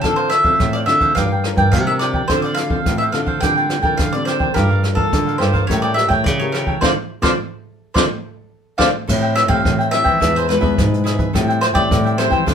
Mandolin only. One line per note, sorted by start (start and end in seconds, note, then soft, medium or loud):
0.01 0.16 A4 medium
0.16 0.30 C5 medium
0.30 0.74 E5 medium
0.73 0.78 D5 medium
0.86 1.13 E5 medium
1.15 1.68 F5 medium
1.72 1.86 F5 medium
1.87 1.92 E5 medium
1.99 2.27 D5 medium
2.28 2.42 C5 medium
2.42 2.56 D5 medium
2.54 2.98 F5 medium
2.98 3.03 E5 medium
3.12 3.20 F5 medium
3.41 3.94 G5 medium
3.97 4.13 F5 medium
4.13 4.25 D5 medium
4.25 4.53 C5 medium
4.54 4.95 A#4 medium
4.95 5.38 A4 medium
5.38 5.67 C5 medium
5.67 5.82 C#5 medium
5.82 5.96 D5 medium
5.94 6.08 E5 medium
6.08 6.24 G5 medium
6.24 6.38 D5 medium
6.39 6.44 C#5 medium
6.52 6.79 A#4 medium
6.81 6.91 C5 medium
6.81 6.91 D5 medium
6.81 6.91 F5 medium
7.22 7.33 C5 medium
7.22 7.32 D5 medium
7.22 7.32 F5 medium
7.94 8.04 C5 medium
7.94 8.04 D5 medium
7.94 8.04 F5 medium
8.78 8.88 C5 medium
8.78 8.88 D5 medium
8.78 8.88 F5 medium
9.35 9.40 E5 medium
9.48 9.91 F5 loud
9.91 10.36 E5 medium
10.36 10.48 C5 medium
10.49 11.02 B4 medium
11.61 11.66 C5 medium
11.75 12.18 D5 loud
12.18 12.54 C5 loud